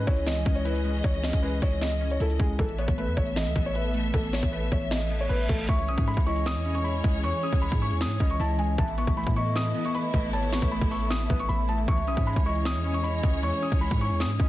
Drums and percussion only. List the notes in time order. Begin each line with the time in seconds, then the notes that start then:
0.07 kick, closed hi-hat
0.16 closed hi-hat
0.27 snare, closed hi-hat
0.37 closed hi-hat
0.45 kick, closed hi-hat
0.56 closed hi-hat
0.65 closed hi-hat
0.75 closed hi-hat
0.84 closed hi-hat
1.04 kick, closed hi-hat
1.14 closed hi-hat
1.24 snare, closed hi-hat
1.33 kick, closed hi-hat
1.43 closed hi-hat
1.62 kick, closed hi-hat
1.71 closed hi-hat
1.81 snare, closed hi-hat
1.92 closed hi-hat
2.00 closed hi-hat
2.10 closed hi-hat
2.20 closed hi-hat
2.30 closed hi-hat
2.39 kick, closed hi-hat
2.59 kick, closed hi-hat
2.69 closed hi-hat
2.78 closed hi-hat
2.88 kick, closed hi-hat
2.98 closed hi-hat
3.17 kick, closed hi-hat
3.26 closed hi-hat
3.36 snare, closed hi-hat
3.46 closed hi-hat
3.55 kick, closed hi-hat
3.65 closed hi-hat
3.75 closed hi-hat
3.85 closed hi-hat
3.94 closed hi-hat
4.14 kick, closed hi-hat
4.23 closed hi-hat
4.33 snare, closed hi-hat
4.43 kick, closed hi-hat
4.53 closed hi-hat
4.72 kick, closed hi-hat
4.81 closed hi-hat
4.91 snare, closed hi-hat
5.01 closed hi-hat
5.10 closed hi-hat
5.20 closed hi-hat
5.30 closed hi-hat
5.36 closed hi-hat
5.43 closed hi-hat
5.49 kick, closed hi-hat
5.69 kick, closed hi-hat
5.78 closed hi-hat
5.88 closed hi-hat
5.98 kick, closed hi-hat
6.07 closed hi-hat
6.14 kick, closed hi-hat
6.20 closed hi-hat
6.27 closed hi-hat
6.36 closed hi-hat
6.46 snare, closed hi-hat
6.56 closed hi-hat
6.65 closed hi-hat
6.75 closed hi-hat
6.85 closed hi-hat
7.04 kick, closed hi-hat
7.24 closed hi-hat
7.33 closed hi-hat
7.43 closed hi-hat
7.53 kick, closed hi-hat
7.62 closed hi-hat
7.69 kick, closed hi-hat
7.75 closed hi-hat
7.81 closed hi-hat
7.91 closed hi-hat
8.01 snare, closed hi-hat
8.11 closed hi-hat
8.20 kick, closed hi-hat
8.30 closed hi-hat
8.40 closed hi-hat
8.59 closed hi-hat
8.78 kick, closed hi-hat
8.88 closed hi-hat
8.98 closed hi-hat
9.07 kick, closed hi-hat
9.17 closed hi-hat
9.24 kick, closed hi-hat
9.30 closed hi-hat
9.36 closed hi-hat
9.46 closed hi-hat
9.56 snare, closed hi-hat
9.66 closed hi-hat
9.74 closed hi-hat
9.85 closed hi-hat
9.95 closed hi-hat
10.13 kick, closed hi-hat
10.33 closed hi-hat
10.43 closed hi-hat
10.53 snare, closed hi-hat
10.62 kick, closed hi-hat
10.72 closed hi-hat
10.81 kick
10.91 open hi-hat
11.00 closed hi-hat
11.11 snare, closed hi-hat
11.21 closed hi-hat
11.29 kick, closed hi-hat
11.39 closed hi-hat
11.49 closed hi-hat
11.69 closed hi-hat
11.78 closed hi-hat
11.88 kick, closed hi-hat
11.98 closed hi-hat
12.07 closed hi-hat
12.17 kick, closed hi-hat
12.27 closed hi-hat
12.33 kick, closed hi-hat
12.40 closed hi-hat
12.46 closed hi-hat
12.55 closed hi-hat
12.65 snare, closed hi-hat
12.75 closed hi-hat
12.84 closed hi-hat
12.94 closed hi-hat
13.04 closed hi-hat
13.23 kick, closed hi-hat
13.43 closed hi-hat
13.52 closed hi-hat
13.62 closed hi-hat
13.72 kick, closed hi-hat
13.82 closed hi-hat
13.88 kick, closed hi-hat
13.94 closed hi-hat
14.01 closed hi-hat
14.10 closed hi-hat
14.20 snare, closed hi-hat
14.30 closed hi-hat
14.39 kick, closed hi-hat